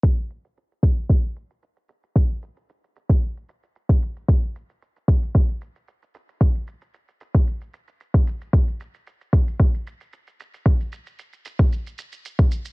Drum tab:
SH |x-xxxxxxxxxxxxxx|xxxxxxxxxxxxxxxx|xxxxxxxxxxxxxxxx|xxxxxxxxxxxxxxxx|
BD |o-----o-o-------|o------o-----o--|o-----o-o-------|o------o-----o--|

SH |xxxxxxxxxxxxxxxx|xxxxxxxxxxxxxxxx|
BD |o-----o-o-------|o------o-----o--|